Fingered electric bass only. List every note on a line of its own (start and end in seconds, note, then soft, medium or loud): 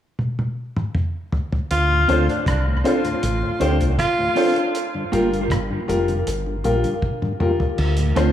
1.71 2.06 D2 loud
2.09 2.27 D2 medium
2.47 2.82 C2 medium
3.23 3.41 A1 medium
3.61 3.79 D2 loud
3.81 3.97 C2 medium
5.13 5.48 G1 loud
5.51 5.69 G1 loud
5.89 6.24 F1 medium
6.27 6.62 G1 medium
6.65 6.83 A#1 medium
7.78 8.13 D2 loud
8.16 8.32 D2 medium